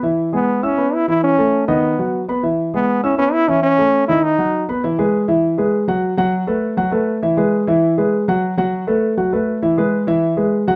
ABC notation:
X:1
M:4/4
L:1/8
Q:1/4=200
K:E
V:1 name="Grand piano"
[E,Ee]2 [G,Gg]2 [Eee'] [B,Bb]2 [E,Ee]- | [E,Ee] [A,Aa]2 [D,Dd]2 [F,Ff]2 [B,Bb] | [E,Ee]2 [G,Gg]2 [Eee'] [B,Bb]2 [E,Ee]- | [E,Ee] [A,Aa]2 [D,Dd]2 [F,Ff]2 [B,Bb] |
[E,Ee] [G,GB]2 [E,Ee]2 [G,GB]2 [F,Ff]- | [F,Ff] [F,Ff]2 [A,AB]2 [F,Ff] [A,AB]2 | [E,Ee] [G,GB]2 [E,Ee]2 [G,GB]2 [F,Ff]- | [F,Ff] [F,Ff]2 [A,AB]2 [F,Ff] [A,AB]2 |
[E,Ee] [G,GB]2 [E,Ee]2 [G,GB]2 [F,Ff] |]
V:2 name="Trombone"
z2 B,2 C2 E E | C3 B,4 z | z2 B,2 C C E C | C3 E D3 z |
z8 | z8 | z8 | z8 |
z8 |]